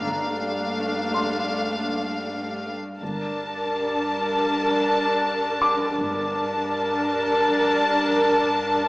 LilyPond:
<<
  \new Staff \with { instrumentName = "Grand piano" } { \time 4/4 \key g \minor \tempo 4 = 81 bes''4. c'''2~ c'''8~ | c'''8 r2. d'''8~ | d'''2~ d'''8 r4. | }
  \new Staff \with { instrumentName = "Violin section" } { \time 4/4 \key g \minor f''2.~ f''8. r16 | a''1 | a''1 | }
  \new Staff \with { instrumentName = "Viola section" } { \time 4/4 \key g \minor <a d'>2.~ <a d'>8. r16 | <d' bes'>1 | <d' bes'>1 | }
  \new Staff \with { instrumentName = "Cello section" } { \clef bass \time 4/4 \key g \minor g,2.~ g,8. r16 | g,1 | g,1 | }
  \new Staff \with { instrumentName = "Double bass section" } { \clef bass \time 4/4 \key g \minor g,,4 r2. | g,,4 r2. | g,,4 r2. | }
>>